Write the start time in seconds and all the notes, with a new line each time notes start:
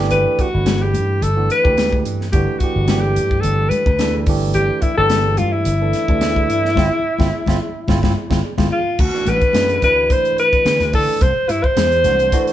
Already playing: E3 A3 D4 G4
0.10 G1 B4, closed hi-hat, muted conga
0.39 F#4, muted slap bass stroke, kick, closed hi-hat
0.54 G1 E3 A3 D4 E4
0.66 snare, closed hi-hat, high conga
0.82 G4
0.94 G2, closed hi-hat, high conga
1.22 G1 A4, closed hi-hat, muted conga
1.36 E3 A3 D4 F#4
1.50 B4, closed hi-hat, muted conga
1.63 D2 E3 A3 D4 G4, kick
1.77 snare, closed hi-hat, muted conga, high conga
1.93 kick
2.05 G2, closed hi-hat
2.21 snare
2.32 G1 E3 A3 D4 F#4 G4, kick, closed hi-hat, muted conga
2.59 E3 A3 F#4, muted slap bass stroke, kick, closed hi-hat
2.63 D4 G4
2.75 G1
2.88 E3 A3 D4 G4, snare, closed hi-hat, high conga, low conga
3.00 G4
3.16 G2, closed hi-hat
3.31 kick
3.41 G1 A4, closed hi-hat, muted conga
3.69 B4, closed hi-hat, muted conga, high conga
3.86 D2, kick
3.99 E3 A3 D4 A4, snare, closed hi-hat, muted conga, high conga
4.26 G1 E3 A3 D4 G4, kick, open hi-hat
4.54 G1 G4, closed hi-hat, muted conga
4.82 E4, muted slap bass stroke, kick, closed hi-hat
4.97 G1 E3 A3 D4 G4 A4
5.10 snare, closed hi-hat, high conga
5.37 G2 F4, closed hi-hat, high conga
5.52 E4
5.65 G1, closed hi-hat, muted conga
5.81 E3 A3 D4 A4
5.93 snare, closed hi-hat, muted conga
6.08 D2 E3 A3 D4 A4, kick
6.21 snare, closed hi-hat, muted conga, high conga
6.36 kick
6.50 G2, closed hi-hat
6.65 snare
6.76 G1 C4 E4 F4, kick, snare, high conga
7.18 G1 C4 E4 F4, kick, snare, high conga
7.46 G1 C4 E4 F4, kick, snare, high conga
7.88 G1 C4 E4 F4, kick, snare, high conga
8.03 G1 C4 E4 F4, kick, snare, high conga
8.30 G1 C4 E4 F4, kick, snare, high conga
8.58 G1 C4 E4 F4, kick, snare, high conga
8.72 F4
8.99 D2 F#4, kick, crash, muted conga
9.14 E3 A3 D4 F#4, muted slap bass stroke, snare
9.26 A1 B4, closed hi-hat, high conga
9.41 kick, closed hi-hat
9.53 F#2 E3 A3 D4 E4, snare, closed hi-hat, high conga
9.69 closed hi-hat
9.82 D2 E3 A3 D4 E4 B4, kick, closed hi-hat, muted conga
10.10 C5, kick, closed hi-hat, muted conga
10.25 closed hi-hat
10.38 B4, closed hi-hat, muted conga
10.53 muted slap bass stroke, kick, closed hi-hat
10.65 D3, snare, closed hi-hat, high conga
10.80 D2, snare, closed hi-hat
10.93 D3 E3 A3 D4 A4, kick, open hi-hat
11.09 muted slap bass stroke
11.21 C2 C5, kick, closed hi-hat, muted conga
11.36 muted slap bass stroke
11.49 G2 E4, closed hi-hat
11.64 C5, kick
11.77 E2, snare, closed hi-hat, high conga
11.92 closed hi-hat
12.04 C2 E3 A3 D4 F#4, snare, closed hi-hat, high conga, low conga
12.19 closed hi-hat
12.32 E3 A3 D4 F#4, kick, closed hi-hat, muted conga
12.47 closed hi-hat